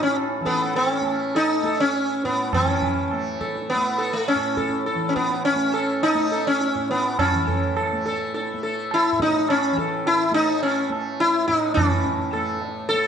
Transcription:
Already playing: tanpura A2 E3 A3
0.03 sitar C#4
0.17 tabla na
0.40 tanpura E3
0.45 sitar B3 A4, tabla ke
0.75 sitar C4 A4, tabla tin
0.91 sitar C#4
1.01 tanpura A3, tabla na
1.35 sitar D#4 A4, tabla na
1.63 tanpura A3, sitar A4, tabla na
1.80 sitar C#4
1.93 tabla te
2.23 tanpura A2, sitar B3, tabla te
2.53 tanpura E3, sitar C#4, tabla na, tabla ge
2.82 tabla ge
3.11 tanpura A3, tabla na
3.41 sitar A4, tabla ke
3.55 tabla te
3.70 sitar B3, tabla te
3.75 tanpura A3
3.98 sitar A4, tabla te
4.13 sitar A3
4.28 sitar C#4, tabla na
4.35 tanpura A2
4.57 sitar A4, tabla ke
4.86 sitar A4, tabla te
4.95 tanpura E3
5.01 tabla te
5.09 sitar C#4
5.16 sitar B3, tabla ke
5.30 tabla te
5.45 sitar C#4, tabla tin
5.55 tanpura A3
5.74 sitar A4, tabla na
6.03 sitar D#4, tabla na
6.14 tanpura A3
6.32 sitar A4, tabla na
6.47 sitar C#4
6.61 tabla te
6.75 tanpura A2
6.90 sitar B3, tabla te
7.19 sitar C#4, tabla na, tabla ge
7.33 tanpura E3
7.47 sitar A4, tabla ge
7.77 sitar A4, tabla na
7.93 tanpura A3
8.06 sitar A4, tabla te
8.34 sitar A4, tabla te
8.53 tanpura A3
8.63 sitar A4, tabla te
8.91 sitar E4, tabla na
9.12 tanpura A2
9.20 sitar D#4, tabla ke
9.49 sitar C#4, tabla na
9.72 tanpura E3
9.78 sitar A4, tabla ke
10.06 sitar E4, tabla tin
10.31 tanpura A3, sitar D#4
10.36 tabla na
10.63 sitar C#4, tabla na
10.89 tanpura A3, tabla na
11.20 sitar E4, tabla te
11.48 tanpura A2, sitar D#4, tabla te
11.74 tanpura E3, sitar C#4, tabla na, tabla ge
12.06 tabla ge
12.33 tanpura A3, sitar A4, tabla na
12.62 tabla te
12.89 sitar A4, tabla te
12.93 tanpura A3

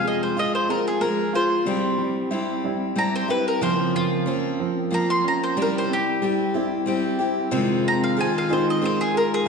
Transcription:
Already playing: steel-string acoustic guitar F2 C3 F3 G#3 F4 G#4
0.04 upright piano G#3, mandolin D#5
0.23 mandolin C5
0.36 steel-string acoustic guitar F3 G#3 F4 G#4, upright piano F4, mandolin D#5
0.55 mandolin C5
0.69 steel-string acoustic guitar F3 G#3 F4 G#4, upright piano G#3 C4 F4, mandolin A#4
0.88 mandolin G#4
1.01 steel-string acoustic guitar F3 G#3 F4 G#4, upright piano G#3, mandolin A#4
1.33 steel-string acoustic guitar F3 G#3 F4 G#4, upright piano F4, mandolin C5
1.65 steel-string acoustic guitar C3 G3 C4 E4 G4, upright piano G3
1.98 upright piano G3
2.31 steel-string acoustic guitar G3 C4 E4 G4, upright piano E4
2.64 upright piano G3 C4 E4
2.96 steel-string acoustic guitar G3 C4 E4 G4, upright piano G3, mandolin A#5
3.15 mandolin C5
3.28 steel-string acoustic guitar C4 E4 G4, upright piano E4, mandolin B4
3.48 mandolin A#4
3.61 steel-string acoustic guitar C#3 F3 A#3 C4 A#4, upright piano F3, mandolin C5
3.95 upright piano F3, mandolin F4
4.26 steel-string acoustic guitar F3 A#3 C4 A#4, upright piano C#4
4.60 upright piano F3 C4
4.90 steel-string acoustic guitar F3 A#3 C4 A#4, upright piano F3, mandolin A#5
5.10 mandolin C6
5.24 upright piano C#4, mandolin A#5
5.44 mandolin C5
5.56 steel-string acoustic guitar C3 G3 C4 E4 G4, upright piano G3
5.62 mandolin A#4
5.78 mandolin C5
5.90 upright piano C4, mandolin G4
6.22 steel-string acoustic guitar G3 C4 E4 G4, upright piano G4
6.54 upright piano C4 E4 G4, steel-string acoustic guitar C4 E4 G4
6.86 steel-string acoustic guitar G3 C4 E4 G4, upright piano C4
7.19 steel-string acoustic guitar C4 E4 G4, upright piano G4
7.51 steel-string acoustic guitar F2 C3 D#3 G#3 C4 F4, string section D#3 G#3 F4, upright piano C4
7.85 upright piano C4, mandolin A#5
8.04 mandolin F5
8.17 steel-string acoustic guitar D#3 G#3 C4 F4, upright piano G#4, mandolin G#5
8.38 mandolin F5
8.49 steel-string acoustic guitar D#3 G#3 C4 F4, upright piano C4 D#4 G#4, mandolin C5
8.70 mandolin D#5
8.82 steel-string acoustic guitar D#3 G#3 C4 F4, upright piano C4, mandolin C5
9.01 mandolin G#4
9.14 upright piano G#4, mandolin A#4
9.34 mandolin G#4

